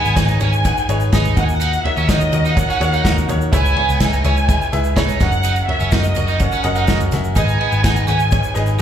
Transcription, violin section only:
Already playing: G#5
0.41 G#5
1.38 F#5
1.45 G#5
1.52 F#5
1.85 E5
2.08 D#5
2.57 F#5
3.54 G#5
4.25 G#5
5.22 F#5
5.71 E5
5.95 D#5
6.43 F#5
7.37 G#5
8.09 G#5

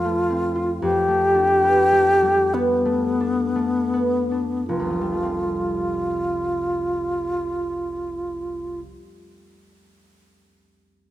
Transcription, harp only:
Already playing: F2 F3 C4 D4 F4
0.05 A3
0.30 C4
0.56 F4
0.82 F2
1.08 A3
1.35 D4
1.63 B3
1.92 A3
2.22 G3
2.54 B3
2.85 A3
3.21 D4
3.56 A3
3.94 B3
4.32 D4
4.69 F1
4.80 C2
4.91 F3
5.01 G3
5.12 A3
5.23 C4

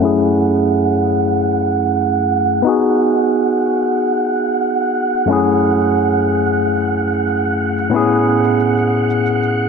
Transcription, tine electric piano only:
0.00 F#2 A3 C#4 E4
0.05 G#4
2.62 B3 D#4
2.67 F#4 G#4
5.26 F#2 A3 C#4
5.31 E4 G#4
7.90 A2 B3 C#4
7.95 E4 G#4

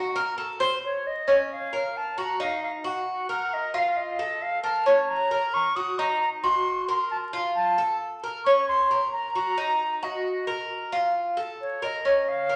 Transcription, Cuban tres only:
Already playing: F#4
0.16 A#4
0.38 A4
0.60 C5
1.28 C#4
1.73 A#4
2.18 F#4
2.40 D#4
2.84 F#4
3.29 A#4
3.74 F4
4.19 A4
4.64 A#4
4.86 C#4
5.31 A#4
5.76 F#4
5.99 D#4
6.44 F#4
6.88 A#4
7.33 F4
7.78 A4
8.24 A#4
8.46 C#4
8.91 A#4
9.35 F#4
9.58 D#4
10.03 F#4
10.47 A#4
10.92 F4
11.37 A4
11.82 A#4
12.05 C#4
12.49 A#4

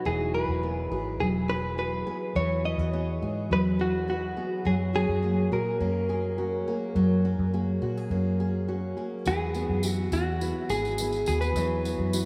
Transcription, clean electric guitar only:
0.06 G#4
0.34 B4
1.20 G#4
1.50 B4
1.79 B4
2.36 C#5
2.65 D#5
3.53 B4
3.81 F#4
4.10 F#4
4.67 G#4
4.96 G#4
5.53 A#4
9.28 G#4
9.91 F#4
10.13 F#4
10.70 G#4
11.28 G#4
11.41 B4

